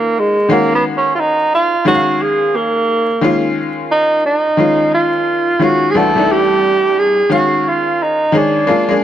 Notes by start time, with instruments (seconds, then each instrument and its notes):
Already playing: upright piano D#3 G#3 C#4 F4, tenor saxophone A#3
0.19 tenor saxophone G#3
0.49 upright piano D#3 G#3 C#4 F#4, tenor saxophone A#3
0.75 tenor saxophone B3
0.97 tenor saxophone C#4
1.15 tenor saxophone F4
1.20 tenor saxophone D#4
1.55 tenor saxophone F4
1.85 upright piano D#3 G#3 C#4 D#4, tenor saxophone F#4
1.95 upright piano F5
2.22 tenor saxophone G#4
2.56 tenor saxophone A#3
3.21 upright piano D#3 G#3 C#4 F4
3.91 tenor saxophone D#4
4.26 tenor saxophone D#4
4.57 upright piano D#3 G#3 C#4 F4
4.94 tenor saxophone F4
5.59 upright piano D#3 G#3 C#4 F4, tenor saxophone F#4
5.91 upright piano C2, tenor saxophone G#4
5.95 upright piano E3 A3 D4 F#4, tenor saxophone A4
6.15 upright piano C2 E3 A3 D4 D#4
6.25 upright piano E4
6.32 tenor saxophone G4
6.99 tenor saxophone G#4
7.29 upright piano D#3 G#3 C#4 F5, tenor saxophone F#4
7.68 tenor saxophone F4
8.03 tenor saxophone D#4
8.32 upright piano D#3 G#3 G#4 C#5
8.37 tenor saxophone D4
8.67 upright piano G#3 A#3 D4 F4
8.88 upright piano G#3 A#3 D4 G#4